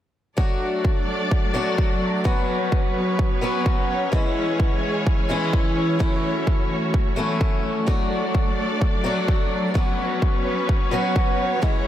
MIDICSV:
0, 0, Header, 1, 4, 480
1, 0, Start_track
1, 0, Tempo, 468750
1, 387, Time_signature, 4, 2, 24, 8
1, 12159, End_track
2, 0, Start_track
2, 0, Title_t, "String section"
2, 0, Program_c, 0, 48
2, 386, Note_on_c, 0, 69, 65
2, 387, Note_on_c, 0, 54, 76
2, 387, Note_on_c, 0, 57, 67
2, 388, Note_on_c, 0, 62, 68
2, 388, Note_on_c, 0, 74, 83
2, 2287, Note_off_c, 0, 69, 0
2, 2288, Note_off_c, 0, 57, 0
2, 2288, Note_off_c, 0, 62, 0
2, 2288, Note_off_c, 0, 74, 0
2, 2306, Note_on_c, 0, 59, 66
2, 2306, Note_on_c, 0, 61, 65
2, 2308, Note_on_c, 0, 71, 68
2, 2308, Note_on_c, 0, 73, 79
2, 4189, Note_off_c, 0, 54, 0
2, 4207, Note_off_c, 0, 59, 0
2, 4208, Note_off_c, 0, 71, 0
2, 4229, Note_on_c, 0, 52, 72
2, 4229, Note_on_c, 0, 56, 68
2, 4229, Note_on_c, 0, 68, 67
2, 6128, Note_off_c, 0, 68, 0
2, 6129, Note_off_c, 0, 56, 0
2, 6146, Note_on_c, 0, 66, 66
2, 6147, Note_on_c, 0, 57, 67
2, 8025, Note_off_c, 0, 61, 0
2, 8026, Note_off_c, 0, 73, 0
2, 8029, Note_off_c, 0, 52, 0
2, 8047, Note_off_c, 0, 66, 0
2, 8067, Note_on_c, 0, 62, 67
2, 8067, Note_on_c, 0, 74, 79
2, 8068, Note_on_c, 0, 54, 72
2, 8069, Note_on_c, 0, 69, 66
2, 9948, Note_off_c, 0, 57, 0
2, 9968, Note_off_c, 0, 62, 0
2, 9968, Note_off_c, 0, 69, 0
2, 9968, Note_off_c, 0, 74, 0
2, 9987, Note_on_c, 0, 59, 65
2, 9988, Note_on_c, 0, 61, 68
2, 9988, Note_on_c, 0, 71, 71
2, 9988, Note_on_c, 0, 73, 79
2, 11869, Note_off_c, 0, 54, 0
2, 11888, Note_off_c, 0, 59, 0
2, 11888, Note_off_c, 0, 61, 0
2, 11888, Note_off_c, 0, 71, 0
2, 11908, Note_on_c, 0, 52, 76
2, 11908, Note_on_c, 0, 56, 68
2, 11908, Note_on_c, 0, 61, 68
2, 11908, Note_on_c, 0, 68, 68
2, 12159, Note_off_c, 0, 52, 0
2, 12159, Note_off_c, 0, 56, 0
2, 12159, Note_off_c, 0, 61, 0
2, 12159, Note_off_c, 0, 68, 0
2, 12159, Note_off_c, 0, 73, 0
2, 12159, End_track
3, 0, Start_track
3, 0, Title_t, "Steel-string acoustic guitar"
3, 0, Program_c, 1, 25
3, 375, Note_on_c, 1, 54, 66
3, 383, Note_on_c, 1, 57, 62
3, 392, Note_on_c, 1, 62, 58
3, 400, Note_on_c, 1, 66, 74
3, 1552, Note_off_c, 1, 54, 0
3, 1556, Note_off_c, 1, 57, 0
3, 1560, Note_off_c, 1, 62, 0
3, 1564, Note_off_c, 1, 66, 0
3, 1575, Note_on_c, 1, 54, 81
3, 1583, Note_on_c, 1, 57, 77
3, 1591, Note_on_c, 1, 62, 76
3, 1599, Note_on_c, 1, 66, 90
3, 2272, Note_off_c, 1, 54, 0
3, 2276, Note_off_c, 1, 57, 0
3, 2280, Note_off_c, 1, 62, 0
3, 2284, Note_off_c, 1, 66, 0
3, 2294, Note_on_c, 1, 54, 68
3, 2303, Note_on_c, 1, 59, 62
3, 2311, Note_on_c, 1, 61, 61
3, 2319, Note_on_c, 1, 66, 71
3, 3472, Note_off_c, 1, 54, 0
3, 3476, Note_off_c, 1, 59, 0
3, 3480, Note_off_c, 1, 61, 0
3, 3484, Note_off_c, 1, 66, 0
3, 3496, Note_on_c, 1, 54, 80
3, 3504, Note_on_c, 1, 59, 73
3, 3512, Note_on_c, 1, 61, 73
3, 3520, Note_on_c, 1, 66, 86
3, 4192, Note_off_c, 1, 54, 0
3, 4196, Note_off_c, 1, 59, 0
3, 4201, Note_off_c, 1, 61, 0
3, 4205, Note_off_c, 1, 66, 0
3, 4215, Note_on_c, 1, 52, 68
3, 4223, Note_on_c, 1, 56, 61
3, 4231, Note_on_c, 1, 61, 61
3, 4240, Note_on_c, 1, 64, 76
3, 5392, Note_off_c, 1, 52, 0
3, 5396, Note_off_c, 1, 56, 0
3, 5400, Note_off_c, 1, 61, 0
3, 5404, Note_off_c, 1, 64, 0
3, 5415, Note_on_c, 1, 52, 81
3, 5422, Note_on_c, 1, 56, 76
3, 5431, Note_on_c, 1, 61, 77
3, 5439, Note_on_c, 1, 64, 89
3, 6112, Note_off_c, 1, 52, 0
3, 6116, Note_off_c, 1, 56, 0
3, 6120, Note_off_c, 1, 61, 0
3, 6124, Note_off_c, 1, 64, 0
3, 6134, Note_on_c, 1, 54, 68
3, 6142, Note_on_c, 1, 57, 62
3, 6150, Note_on_c, 1, 61, 60
3, 6159, Note_on_c, 1, 64, 74
3, 7312, Note_off_c, 1, 54, 0
3, 7316, Note_off_c, 1, 57, 0
3, 7320, Note_off_c, 1, 61, 0
3, 7324, Note_off_c, 1, 64, 0
3, 7333, Note_on_c, 1, 54, 80
3, 7341, Note_on_c, 1, 57, 74
3, 7349, Note_on_c, 1, 61, 73
3, 7358, Note_on_c, 1, 64, 89
3, 8031, Note_off_c, 1, 54, 0
3, 8035, Note_off_c, 1, 57, 0
3, 8039, Note_off_c, 1, 61, 0
3, 8043, Note_off_c, 1, 64, 0
3, 8054, Note_on_c, 1, 54, 69
3, 8062, Note_on_c, 1, 57, 62
3, 8070, Note_on_c, 1, 62, 62
3, 8078, Note_on_c, 1, 66, 75
3, 9231, Note_off_c, 1, 54, 0
3, 9235, Note_off_c, 1, 57, 0
3, 9239, Note_off_c, 1, 62, 0
3, 9244, Note_off_c, 1, 66, 0
3, 9254, Note_on_c, 1, 54, 78
3, 9262, Note_on_c, 1, 57, 74
3, 9271, Note_on_c, 1, 62, 76
3, 9279, Note_on_c, 1, 66, 90
3, 9952, Note_off_c, 1, 54, 0
3, 9956, Note_off_c, 1, 57, 0
3, 9960, Note_off_c, 1, 62, 0
3, 9964, Note_off_c, 1, 66, 0
3, 9975, Note_on_c, 1, 54, 67
3, 9983, Note_on_c, 1, 59, 62
3, 9992, Note_on_c, 1, 61, 62
3, 10000, Note_on_c, 1, 66, 78
3, 11152, Note_off_c, 1, 54, 0
3, 11156, Note_off_c, 1, 59, 0
3, 11160, Note_off_c, 1, 61, 0
3, 11164, Note_off_c, 1, 66, 0
3, 11175, Note_on_c, 1, 54, 81
3, 11183, Note_on_c, 1, 59, 74
3, 11192, Note_on_c, 1, 61, 74
3, 11200, Note_on_c, 1, 66, 92
3, 11872, Note_off_c, 1, 54, 0
3, 11876, Note_off_c, 1, 59, 0
3, 11880, Note_off_c, 1, 61, 0
3, 11885, Note_off_c, 1, 66, 0
3, 11894, Note_on_c, 1, 52, 69
3, 11901, Note_on_c, 1, 56, 62
3, 11910, Note_on_c, 1, 61, 65
3, 11918, Note_on_c, 1, 64, 73
3, 12159, Note_off_c, 1, 52, 0
3, 12159, Note_off_c, 1, 56, 0
3, 12159, Note_off_c, 1, 61, 0
3, 12159, Note_off_c, 1, 64, 0
3, 12159, End_track
4, 0, Start_track
4, 0, Title_t, "Drums"
4, 386, Note_on_c, 9, 36, 104
4, 489, Note_off_c, 9, 36, 0
4, 866, Note_on_c, 9, 36, 108
4, 968, Note_off_c, 9, 36, 0
4, 1346, Note_on_c, 9, 36, 109
4, 1448, Note_off_c, 9, 36, 0
4, 1826, Note_on_c, 9, 36, 114
4, 1929, Note_off_c, 9, 36, 0
4, 2306, Note_on_c, 9, 36, 113
4, 2409, Note_off_c, 9, 36, 0
4, 2787, Note_on_c, 9, 36, 112
4, 2889, Note_off_c, 9, 36, 0
4, 3267, Note_on_c, 9, 36, 120
4, 3369, Note_off_c, 9, 36, 0
4, 3747, Note_on_c, 9, 36, 119
4, 3849, Note_off_c, 9, 36, 0
4, 4227, Note_on_c, 9, 36, 107
4, 4329, Note_off_c, 9, 36, 0
4, 4707, Note_on_c, 9, 36, 111
4, 4809, Note_off_c, 9, 36, 0
4, 5187, Note_on_c, 9, 36, 119
4, 5289, Note_off_c, 9, 36, 0
4, 5667, Note_on_c, 9, 36, 120
4, 5769, Note_off_c, 9, 36, 0
4, 6147, Note_on_c, 9, 36, 115
4, 6249, Note_off_c, 9, 36, 0
4, 6627, Note_on_c, 9, 36, 113
4, 6729, Note_off_c, 9, 36, 0
4, 7106, Note_on_c, 9, 36, 115
4, 7209, Note_off_c, 9, 36, 0
4, 7586, Note_on_c, 9, 36, 120
4, 7688, Note_off_c, 9, 36, 0
4, 8066, Note_on_c, 9, 36, 105
4, 8168, Note_off_c, 9, 36, 0
4, 8546, Note_on_c, 9, 36, 110
4, 8649, Note_off_c, 9, 36, 0
4, 9026, Note_on_c, 9, 36, 113
4, 9129, Note_off_c, 9, 36, 0
4, 9507, Note_on_c, 9, 36, 114
4, 9609, Note_off_c, 9, 36, 0
4, 9987, Note_on_c, 9, 36, 104
4, 10089, Note_off_c, 9, 36, 0
4, 10467, Note_on_c, 9, 36, 103
4, 10569, Note_off_c, 9, 36, 0
4, 10947, Note_on_c, 9, 36, 107
4, 11049, Note_off_c, 9, 36, 0
4, 11426, Note_on_c, 9, 36, 114
4, 11529, Note_off_c, 9, 36, 0
4, 11906, Note_on_c, 9, 36, 101
4, 12008, Note_off_c, 9, 36, 0
4, 12159, End_track
0, 0, End_of_file